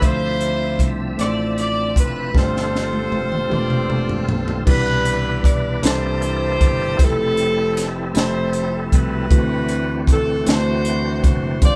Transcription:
0.01 fingered electric bass D2, tine electric piano D3 F3 A3 D4 C5 E5, tonewheel organ F3 C4 D4 E5, saxophone section E4 F4 C5, kick, closed hi-hat
0.41 closed hi-hat
0.79 fingered electric bass C2, kick, closed hi-hat
1.17 fingered electric bass A1, tine electric piano A3 D4 E4 F4 C5, saxophone section D5, closed hi-hat
1.21 cross-stick
1.58 saxophone section D5, closed hi-hat
1.96 fingered electric bass F1, saxophone section B4, kick, closed hi-hat
2.34 fingered electric bass G1, tine electric piano G2 A3 D4 F4 G4 B4, tonewheel organ G3 C4 F4 A4, kick, snare
2.38 saxophone section F4 A4 C5, tine electric piano C5
2.57 snare
2.76 snare
2.93 high tom
3.12 fingered electric bass F1, high tom
3.32 mid tom
3.49 fingered electric bass E1, tine electric piano A3 D4 F4 G4 B4, saxophone section F4 A4, mid tom
3.53 tine electric piano C5, saxophone section D5
3.70 mid tom
3.90 mid tom
4.09 floor tom
4.28 fingered electric bass B1, saxophone section C5, floor tom
4.48 floor tom
4.65 fingered electric bass C2, tine electric piano B2 C3 D4 E4 G4 B4, tonewheel organ E3 B3 D4 A4, saxophone section D4 E4 B4, kick, crash
4.72 tonewheel organ B4
5.05 closed hi-hat
5.44 saxophone section D5, kick, closed hi-hat
5.82 fingered electric bass C2, tine electric piano C3 A#3 D4 E4 A4 C5, tonewheel organ E3 A#3 D4 A4, saxophone section E4 G4 C5, snare, closed hi-hat
6.22 closed hi-hat
6.61 fingered electric bass G1, kick, closed hi-hat
6.97 fingered electric bass F1, tine electric piano F3 G3 E4 G4 B4, tonewheel organ G3 C4 E4 A4, kick, closed hi-hat
7.01 tine electric piano A3, saxophone section C4 E4 A4
7.37 closed hi-hat
7.77 snare, closed hi-hat
8.14 fingered electric bass F1, tine electric piano F3 A3 E4 G4 B5, saxophone section E4 A4, snare, closed hi-hat
8.18 saxophone section C5
8.53 closed hi-hat
8.92 fingered electric bass C2, saxophone section E4 F#4 B4, kick, closed hi-hat
9.30 fingered electric bass D2, tine electric piano D3 A3 D4 E4 F#4 B4, tonewheel organ E3 C4 D4 E4, kick, closed hi-hat
9.37 tine electric piano C4, tonewheel organ F#4
9.69 closed hi-hat
10.07 kick, closed hi-hat
10.12 saxophone section A4
10.45 fingered electric bass D2, tine electric piano A3 D4 E4 F#4 C5, saxophone section E4 F#4 C5, snare, closed hi-hat
10.85 closed hi-hat
11.24 fingered electric bass F#1, saxophone section C5, kick, closed hi-hat
11.62 fingered electric bass G1, tine electric piano G2 G3 C4 D4 F4 B4, tonewheel organ F3 B3 D4 G4, saxophone section F4 D5, kick, closed hi-hat
11.68 tonewheel organ C4, tine electric piano C5

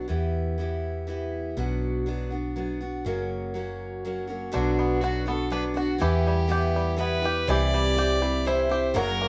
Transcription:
0.08 fingered electric bass E2, steel-string acoustic guitar E3 B3 E4 G4
0.58 steel-string acoustic guitar E3 B3 E4 G4
1.07 steel-string acoustic guitar E3 B3 E4 G4
1.57 fingered electric bass B1, steel-string acoustic guitar B2 F#3 B3 D4 F#4
2.06 steel-string acoustic guitar F#3 B3 D4 F#4
2.30 steel-string acoustic guitar B3 D4 F#4
2.56 steel-string acoustic guitar F#3 B3 D4 F#4
2.81 steel-string acoustic guitar B3 D4 F#4
3.05 fingered electric bass F#1, steel-string acoustic guitar F#2 C#3 F#3 A#3 C#4 F#4
3.54 steel-string acoustic guitar F#3 A#3 C#4 F#4
4.05 steel-string acoustic guitar F#3 A#3 C#4 F#4
4.27 steel-string acoustic guitar F#3 A#3 C#4 F#4
4.52 fingered electric bass B1, steel-string acoustic guitar B2 F#3 B3 D4 F#4, five-string banjo D3 F#4, fiddle D4
4.79 five-string banjo B3
5.01 steel-string acoustic guitar F#3 B3 D4 F#4, fiddle F#4, five-string banjo F#4
5.26 five-string banjo B3, steel-string acoustic guitar B3 D4 F#4, fiddle A4
5.50 steel-string acoustic guitar F#3 B3 D4 F#4, five-string banjo D4, fiddle B4
5.74 steel-string acoustic guitar B3 D4 F#4, fiddle F#4, five-string banjo F#4
5.98 fingered electric bass E2, steel-string acoustic guitar E3 B3 E4 G4, five-string banjo E3 G4, fiddle G4
6.27 five-string banjo G3
6.47 steel-string acoustic guitar E3 B3 E4 G4
6.52 five-string banjo G4
6.76 five-string banjo G3
6.96 steel-string acoustic guitar E3 B3 E4 G4, fiddle B4
7.01 five-string banjo B3
7.22 steel-string acoustic guitar B3 E4 G4, five-string banjo G4
7.47 fingered electric bass C2, steel-string acoustic guitar C3 E3 C4 E4 G4, five-string banjo E3 G4, fiddle D5
7.74 five-string banjo G3
7.95 steel-string acoustic guitar E3 C4 E4 G4, five-string banjo G4
8.21 five-string banjo G3, steel-string acoustic guitar C4 E4 G4
8.45 steel-string acoustic guitar E3 C4 E4 G4, five-string banjo E4, fiddle C5
8.69 steel-string acoustic guitar C4 E4 G4, five-string banjo G4
8.94 fingered electric bass F#1, steel-string acoustic guitar F#2 C#3 F#3 A#3 C#4 A#4, five-string banjo F#3 F#4, fiddle A#4
9.21 five-string banjo A#3

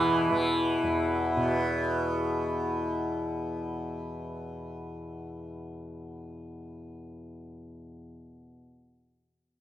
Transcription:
Already playing: tanpura E2 B2 E3, sitar E3
0.31 tanpura E3
0.83 tanpura E2
1.37 tanpura B2

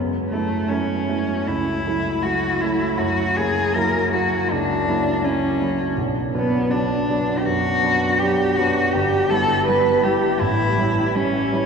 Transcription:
Already playing: grand piano F#2
0.29 grand piano F#3 A3, cello A3
0.33 grand piano E4
0.68 grand piano F#3 A3 E4, cello C#4
1.08 grand piano F#3 A3 E4
1.47 grand piano C#2, cello E4
1.87 grand piano F#3 A3 E4
2.23 grand piano F#3 A3 E4, cello F#4
2.61 grand piano F#3 A3 E4, cello E4
2.98 grand piano F#2, cello F#4
3.37 grand piano F#3 A#3 E4, cello G#4
3.75 grand piano F#3 A#3 E4, cello A#4
4.12 grand piano F#3 A#3 E4, cello F#4
4.51 grand piano C#2, cello D4
4.88 grand piano F#3 A#3 E4
5.24 grand piano F#3 A#3 E4, cello C#4
5.61 grand piano F#3 A#3 E4
5.97 grand piano B1
6.34 grand piano F#3 B3 D4, cello B3
6.71 grand piano F#3 B3 D4, cello D4
7.10 grand piano F#3 B3 D4
7.38 cello G4
7.45 grand piano F#2, cello F#4
7.83 grand piano F#3 B3 D4
8.19 grand piano F#3 B3 D4, cello G4
8.56 grand piano F#3 B3 D4, cello F#4
8.93 grand piano G1, cello G4
9.30 grand piano G3 B3 E4, cello A4
9.66 grand piano G3 B3 E4, cello B4
10.03 grand piano G3 B3 E4, cello G4
10.40 grand piano A1, cello E4
10.78 grand piano G3 C#4 E4
11.15 grand piano G3 C#4 E4, cello C#4
11.52 grand piano G3 C#4 E4

